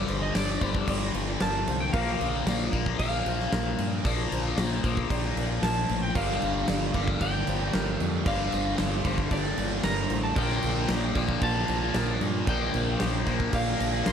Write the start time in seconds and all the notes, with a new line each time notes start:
Already playing: G2 D3 F3 G3 A#3 F4 G4 A#4 D5
0.08 G1 D3 C5, crash
0.22 D#5
0.35 G1 F3 D5, snare, crash
0.61 G1 G2 D3 G3 A#3 C5, kick, crash
0.75 kick
0.87 G1 G4 D5, kick, crash
1.14 G1 F4, crash
1.40 G1 F3 A#4 A5, snare, crash
1.67 C2 A#3 C5, crash
1.80 G5
1.92 A#1 A#2 F3 A#3 A#4 C5 D5 F5 G5, kick, crash
2.07 snare
2.20 A#1 D3, crash
2.46 A#1 F3 D5, snare, crash
2.72 A#1 A#2 F3 A#3 D5, kick, crash
2.86 kick
2.99 A#1 G4 F5, kick, crash
3.26 A#1 D4 C5, crash
3.40 snare
3.52 A#1 F3 A#4, snare, crash
3.79 G2 A#3, crash
4.04 A#1 A#2 F3 A#3 D5 A5, kick, crash
4.31 A#1 D3 C5, crash
4.57 A#1 F3, snare, crash
4.83 A#1 A#2 F3 A#3 C5, kick, crash
4.97 kick
5.10 A#1 G4 D5, kick, crash
5.36 A#1 D4, crash
5.62 A#1 F3 A#4 A5, snare, crash
5.89 A1 A#3 C5, crash
6.02 G5
6.15 G1 G2 D3 G3 A#3 D4 F4 G4 A#4 F5 G5, kick, crash
6.42 G1 D3, crash
6.68 G1 F3 D5, snare, crash
6.93 G1 G2 D3 G3 A#3 D4 D5, kick, crash
7.08 kick
7.21 G1 G4 G5, kick, crash
7.47 G1 F4 C5, crash
7.73 G1 F3 A#4, snare, crash
8.00 F2 A#3, crash
8.26 G1 G2 D3 G3 A#3 D4 D5 F5, kick, crash
8.52 G1 D3 C5, crash
8.78 G1 F3, snare, crash
9.04 G1 G2 D3 G3 A#3 D4 C5, kick, crash
9.18 kick
9.31 G1 G4 D5, kick, crash
9.58 G1 F4, crash
9.84 G1 F3 A#4 A#5, snare, crash
10.10 A1 A#3 C5, crash
10.23 A5
10.35 A#1 A#2 D3 F3 A#3 D4 F4 A#4 C5 D5 G5, kick, crash
10.39 A#3
10.49 snare
10.63 A#1 D3, crash
10.89 A#1 F3 D5, snare, crash
11.14 A#1 A#2 D3 F3 A#3 D4 D5, kick, crash
11.29 kick
11.41 A#1 G4 A5, kick, crash
11.68 A#1 D4 C5, crash
11.94 A#1 F3 A#4, snare, crash
12.21 G2 A#3, crash
12.47 A#1 A#2 D3 F3 A#3 D4 D5 G5, kick, crash
12.74 A#1 D3 C5, crash
13.00 A#1 F3, snare, crash
13.26 A#1 A#2 D3 F3 A#3 D4 C5, kick, crash
13.40 kick
13.53 A#1 G4 D5 F5, kick, crash
13.79 A#1 D4, crash
13.93 snare
14.06 A#1 F3 A#4 C6, snare, crash